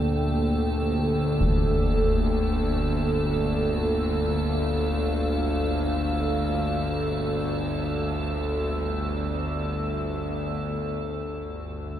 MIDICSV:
0, 0, Header, 1, 5, 480
1, 0, Start_track
1, 0, Key_signature, -2, "minor"
1, 0, Tempo, 500000
1, 11517, End_track
2, 0, Start_track
2, 0, Title_t, "Analog synth pad"
2, 0, Program_c, 0, 89
2, 0, Note_on_c, 0, 58, 67
2, 0, Note_on_c, 0, 69, 82
2, 0, Note_on_c, 0, 79, 62
2, 3417, Note_on_c, 0, 77, 65
2, 3677, Note_off_c, 0, 79, 0
2, 10091, Note_off_c, 0, 69, 0
2, 10095, Note_off_c, 0, 77, 0
2, 10102, Note_off_c, 0, 58, 0
2, 11517, End_track
3, 0, Start_track
3, 0, Title_t, "Ambient pad"
3, 0, Program_c, 1, 92
3, 0, Note_on_c, 1, 69, 70
3, 10076, Note_off_c, 1, 69, 0
3, 11517, End_track
4, 0, Start_track
4, 0, Title_t, "Synth drone"
4, 0, Program_c, 2, 95
4, 0, Note_on_c, 2, 31, 54
4, 0, Note_on_c, 2, 38, 59
4, 10069, Note_off_c, 2, 31, 0
4, 10074, Note_off_c, 2, 38, 0
4, 10080, Note_on_c, 2, 31, 66
4, 10086, Note_on_c, 2, 38, 62
4, 11517, Note_off_c, 2, 31, 0
4, 11517, Note_off_c, 2, 38, 0
4, 11517, End_track
5, 0, Start_track
5, 0, Title_t, "Drums"
5, 1351, Note_on_c, 9, 35, 67
5, 1447, Note_off_c, 9, 35, 0
5, 11517, End_track
0, 0, End_of_file